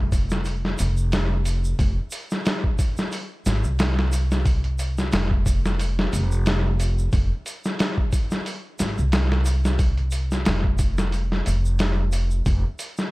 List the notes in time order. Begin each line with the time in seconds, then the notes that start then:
Already playing: F1
0.12 kick, open hi-hat, shaker
0.30 snare, shaker
0.45 open hi-hat, shaker
0.65 snare
0.79 F1, open hi-hat, shaker
0.97 shaker
1.12 snare, open hi-hat, shaker
1.45 open hi-hat, shaker
1.64 shaker
1.79 F1, kick, open hi-hat, shaker
2.11 open hi-hat, shaker
2.30 snare, shaker
2.45 snare, open hi-hat, shaker
2.64 kick
2.79 kick, open hi-hat, shaker
2.97 snare, shaker
3.12 open hi-hat, shaker
3.46 G#1, snare, open hi-hat, shaker
3.64 C2, shaker
3.79 snare, open hi-hat, shaker
3.99 snare
4.12 open hi-hat, shaker
4.31 snare, shaker
4.46 kick, open hi-hat, shaker
4.64 closed hi-hat
4.79 open hi-hat, shaker
4.98 snare, shaker
5.12 F1, snare, open hi-hat, shaker
5.31 kick
5.46 kick, open hi-hat, shaker
5.65 snare, shaker
5.79 open hi-hat, shaker
5.99 snare
6.13 F1, open hi-hat, shaker
6.32 shaker
6.46 snare, open hi-hat, shaker
6.80 open hi-hat, shaker
6.99 shaker
7.12 F1, kick, open hi-hat, shaker
7.46 open hi-hat, shaker
7.64 snare, shaker
7.79 snare, open hi-hat, shaker
7.98 kick
8.13 kick, open hi-hat, shaker
8.31 snare, shaker
8.46 open hi-hat, shaker
8.79 G#1, snare, open hi-hat, shaker
8.98 C2, shaker
9.12 snare, open hi-hat, shaker
9.32 snare
9.45 open hi-hat, shaker
9.65 snare, shaker
9.79 kick, open hi-hat, shaker
9.97 closed hi-hat
10.11 open hi-hat, shaker
10.31 snare, shaker
10.45 F1, snare, open hi-hat, shaker
10.64 kick
10.78 kick, open hi-hat, shaker
10.98 snare, shaker
11.12 open hi-hat, shaker
11.32 snare
11.46 F1, open hi-hat, shaker
11.65 shaker
11.79 snare, open hi-hat, shaker
12.12 open hi-hat, shaker
12.31 shaker
12.46 F1, kick, open hi-hat, shaker
12.79 open hi-hat, shaker
12.97 snare, shaker